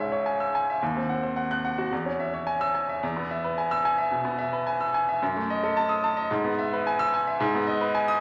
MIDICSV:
0, 0, Header, 1, 2, 480
1, 0, Start_track
1, 0, Tempo, 549954
1, 709, Time_signature, 4, 2, 24, 8
1, 7160, End_track
2, 0, Start_track
2, 0, Title_t, "Grand piano"
2, 0, Program_c, 0, 0
2, 0, Control_c, 0, 64, 127
2, 0, Note_on_c, 0, 37, 65
2, 0, Note_on_c, 0, 44, 54
2, 0, Note_on_c, 0, 61, 47
2, 0, Note_on_c, 0, 73, 50
2, 0, Note_on_c, 0, 76, 54
2, 0, Note_on_c, 0, 80, 62
2, 0, Note_on_c, 0, 88, 70
2, 105, Note_off_c, 0, 73, 0
2, 105, Note_on_c, 0, 73, 58
2, 176, Note_off_c, 0, 76, 0
2, 226, Note_off_c, 0, 80, 0
2, 226, Note_on_c, 0, 80, 56
2, 298, Note_off_c, 0, 73, 0
2, 351, Note_off_c, 0, 88, 0
2, 351, Note_on_c, 0, 88, 58
2, 419, Note_off_c, 0, 80, 0
2, 479, Note_on_c, 0, 80, 56
2, 542, Note_off_c, 0, 88, 0
2, 609, Note_on_c, 0, 76, 54
2, 667, Note_off_c, 0, 80, 0
2, 718, Note_on_c, 0, 39, 67
2, 720, Note_off_c, 0, 76, 0
2, 723, Control_c, 0, 64, 0
2, 724, Note_off_c, 0, 37, 0
2, 730, Note_off_c, 0, 61, 0
2, 731, Note_off_c, 0, 44, 0
2, 842, Note_on_c, 0, 60, 56
2, 856, Control_c, 0, 64, 127
2, 952, Note_on_c, 0, 78, 55
2, 1029, Note_off_c, 0, 60, 0
2, 1073, Note_on_c, 0, 72, 55
2, 1144, Note_off_c, 0, 78, 0
2, 1189, Note_on_c, 0, 78, 57
2, 1264, Note_off_c, 0, 72, 0
2, 1318, Note_on_c, 0, 90, 67
2, 1382, Note_off_c, 0, 78, 0
2, 1437, Note_on_c, 0, 78, 61
2, 1507, Note_off_c, 0, 90, 0
2, 1556, Note_on_c, 0, 66, 61
2, 1627, Note_off_c, 0, 78, 0
2, 1648, Note_off_c, 0, 39, 0
2, 1674, Note_off_c, 0, 66, 0
2, 1679, Note_on_c, 0, 40, 67
2, 1686, Control_c, 0, 64, 0
2, 1796, Note_on_c, 0, 61, 50
2, 1808, Control_c, 0, 64, 127
2, 1917, Note_on_c, 0, 76, 53
2, 1987, Note_off_c, 0, 61, 0
2, 2041, Note_on_c, 0, 73, 54
2, 2108, Note_off_c, 0, 76, 0
2, 2153, Note_on_c, 0, 80, 63
2, 2231, Note_off_c, 0, 73, 0
2, 2277, Note_on_c, 0, 88, 78
2, 2348, Note_off_c, 0, 80, 0
2, 2396, Note_on_c, 0, 80, 57
2, 2470, Note_off_c, 0, 88, 0
2, 2523, Note_on_c, 0, 76, 52
2, 2590, Note_off_c, 0, 80, 0
2, 2613, Note_off_c, 0, 40, 0
2, 2641, Note_off_c, 0, 76, 0
2, 2645, Note_on_c, 0, 40, 74
2, 2654, Control_c, 0, 64, 0
2, 2762, Note_on_c, 0, 59, 55
2, 2804, Control_c, 0, 64, 127
2, 2888, Note_on_c, 0, 76, 58
2, 2953, Note_off_c, 0, 59, 0
2, 3004, Note_on_c, 0, 71, 54
2, 3077, Note_off_c, 0, 76, 0
2, 3123, Note_on_c, 0, 80, 60
2, 3195, Note_off_c, 0, 71, 0
2, 3240, Note_on_c, 0, 88, 82
2, 3314, Note_off_c, 0, 80, 0
2, 3360, Note_on_c, 0, 80, 63
2, 3431, Note_off_c, 0, 88, 0
2, 3473, Note_on_c, 0, 76, 61
2, 3551, Note_off_c, 0, 80, 0
2, 3572, Note_off_c, 0, 40, 0
2, 3591, Note_on_c, 0, 47, 59
2, 3665, Note_off_c, 0, 76, 0
2, 3708, Note_on_c, 0, 59, 58
2, 3783, Note_off_c, 0, 47, 0
2, 3826, Note_on_c, 0, 76, 61
2, 3901, Note_off_c, 0, 59, 0
2, 3949, Note_on_c, 0, 71, 57
2, 4020, Note_off_c, 0, 76, 0
2, 4072, Note_on_c, 0, 80, 62
2, 4140, Note_off_c, 0, 71, 0
2, 4194, Note_on_c, 0, 88, 62
2, 4261, Note_off_c, 0, 80, 0
2, 4314, Note_on_c, 0, 80, 61
2, 4382, Note_off_c, 0, 88, 0
2, 4439, Note_on_c, 0, 76, 57
2, 4501, Note_off_c, 0, 80, 0
2, 4552, Note_off_c, 0, 76, 0
2, 4559, Note_on_c, 0, 42, 76
2, 4562, Control_c, 0, 64, 0
2, 4683, Note_on_c, 0, 57, 60
2, 4695, Control_c, 0, 64, 127
2, 4802, Note_on_c, 0, 75, 66
2, 4865, Note_off_c, 0, 57, 0
2, 4918, Note_on_c, 0, 69, 66
2, 4984, Note_off_c, 0, 75, 0
2, 5033, Note_on_c, 0, 81, 71
2, 5101, Note_off_c, 0, 69, 0
2, 5142, Note_on_c, 0, 87, 77
2, 5219, Note_off_c, 0, 81, 0
2, 5269, Note_on_c, 0, 81, 73
2, 5333, Note_off_c, 0, 87, 0
2, 5383, Note_on_c, 0, 75, 65
2, 5458, Note_off_c, 0, 81, 0
2, 5480, Note_off_c, 0, 42, 0
2, 5503, Note_off_c, 0, 75, 0
2, 5505, Note_on_c, 0, 44, 75
2, 5519, Control_c, 0, 64, 0
2, 5625, Note_on_c, 0, 59, 62
2, 5658, Control_c, 0, 64, 127
2, 5747, Note_on_c, 0, 76, 62
2, 5817, Note_off_c, 0, 59, 0
2, 5875, Note_on_c, 0, 71, 65
2, 5938, Note_off_c, 0, 76, 0
2, 5994, Note_on_c, 0, 80, 71
2, 6061, Note_off_c, 0, 71, 0
2, 6103, Note_on_c, 0, 88, 95
2, 6181, Note_off_c, 0, 80, 0
2, 6229, Note_on_c, 0, 80, 69
2, 6295, Note_off_c, 0, 88, 0
2, 6347, Note_on_c, 0, 76, 58
2, 6417, Note_off_c, 0, 80, 0
2, 6435, Note_off_c, 0, 44, 0
2, 6462, Note_on_c, 0, 44, 84
2, 6464, Note_off_c, 0, 76, 0
2, 6476, Control_c, 0, 64, 0
2, 6586, Note_on_c, 0, 59, 63
2, 6611, Control_c, 0, 64, 127
2, 6694, Note_on_c, 0, 75, 70
2, 6775, Note_off_c, 0, 59, 0
2, 6817, Note_on_c, 0, 71, 66
2, 6889, Note_off_c, 0, 75, 0
2, 6936, Note_on_c, 0, 80, 71
2, 7011, Note_off_c, 0, 71, 0
2, 7054, Note_on_c, 0, 87, 94
2, 7130, Note_off_c, 0, 80, 0
2, 7160, Note_off_c, 0, 44, 0
2, 7160, Note_off_c, 0, 87, 0
2, 7160, End_track
0, 0, End_of_file